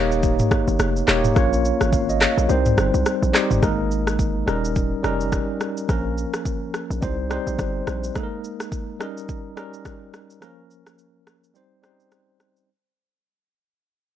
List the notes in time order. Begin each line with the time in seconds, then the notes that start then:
Already playing: D#1 A#3 D#4 G4 C#5
0.12 shaker
0.23 kick, shaker
0.39 mid tom, shaker
0.51 kick, cross-stick, shaker
0.68 G1, shaker
0.79 F1, cross-stick, shaker
0.96 shaker
1.07 D#1 A#3 D#4 G4 C#5, cross-stick, clap, shaker
1.24 mid tom, shaker
1.35 A#1 A#3 C#4 F4 C#5, kick, cross-stick, shaker
1.53 shaker
1.65 shaker
1.81 G#1, cross-stick, shaker
1.93 F5, kick, shaker
2.09 D#5, shaker
2.21 C#5, cross-stick, clap, shaker
2.37 A#1 A#4, shaker
2.48 C2 G3 C4 D#4 C5, shaker
2.66 mid tom, shaker
2.78 G1, cross-stick, shaker
2.94 C2, shaker
3.06 cross-stick, shaker
3.22 A#1, shaker
3.33 G3 C4 D#4 G4, cross-stick, clap, shaker
3.51 G1, mid tom, shaker
3.61 G#1 G#3 A#3 D#4 A#4, kick, cross-stick, shaker
3.91 shaker
4.07 cross-stick, shaker
4.19 kick, shaker
4.46 D#1 G3 C#4 D#4 A#4, cross-stick, shaker
4.65 shaker
4.76 kick, shaker
5.03 F1 G3 C#4 D#4 A#4, cross-stick, shaker
5.21 shaker
5.32 kick, cross-stick, shaker
5.61 cross-stick, shaker
5.77 shaker
5.88 A#1 F3 A#3 C#4 A#4, kick, cross-stick, shaker
6.18 shaker
6.34 cross-stick, shaker
6.45 kick, shaker
6.74 cross-stick, shaker
6.90 A#1, shaker
7.01 C2 G3 C4 D#4 C5, kick, shaker
7.29 G3 C4 D#4 C5, cross-stick, shaker
7.47 A#1, shaker
7.59 G1, kick, cross-stick, shaker
7.87 A#1, cross-stick, shaker
8.04 shaker
8.14 G#3 A#3 D#4 A4, kick, cross-stick, shaker
8.23 A#4
8.44 shaker
8.60 cross-stick, shaker
8.72 kick, shaker
8.99 G3 C#4 D#4 A#4, cross-stick, shaker
9.17 shaker
9.29 kick, shaker
9.56 G3 C#4 D#4 A#4, cross-stick, shaker
9.73 shaker
9.85 kick, cross-stick, shaker
10.14 cross-stick, shaker
10.30 shaker
10.41 F3 A#3 C#4 A#4, cross-stick, shaker
10.71 shaker
10.87 cross-stick, shaker
10.99 shaker
11.27 cross-stick, shaker
11.44 shaker
11.54 G3 C4 D#4 C5, shaker
11.82 G3 C4 C#4 C5, cross-stick, shaker
11.90 D#4
12.00 shaker
12.12 cross-stick, shaker
12.40 cross-stick, shaker
12.56 shaker